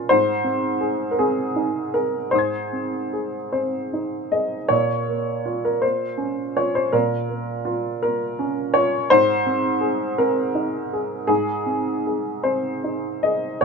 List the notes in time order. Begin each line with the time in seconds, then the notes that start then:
Already playing: A#3 C#4 F4
0.09 G#2 C5
0.44 C4
0.81 G#4
1.11 A#4
1.19 C4 G#4
1.56 D#4
1.94 G#4 A#4
2.31 G#2 C5 C6
2.35 D#6 G#6
2.73 C4
3.13 G#4
3.52 C4 C5
3.93 D#4
4.32 G#4 D#5
4.68 A#2 C#5
5.09 A#3
5.46 F4
5.65 A#4
5.82 A#3 C5
6.17 C#4
6.57 F4 C#5
6.75 C5
6.92 A#2 A#4
7.29 A#3
7.65 F4
8.03 A#3 A#4
8.39 C#4
8.74 F4 C#5
9.10 G#2 C5
9.46 C4
9.81 G#4
10.18 C4 A#4
10.55 D#4
10.93 G#4
11.27 G#2 G#4
11.66 C4
12.07 G#4
12.44 C4 C5
12.84 D#4
13.23 G#4 D#5
13.61 C#5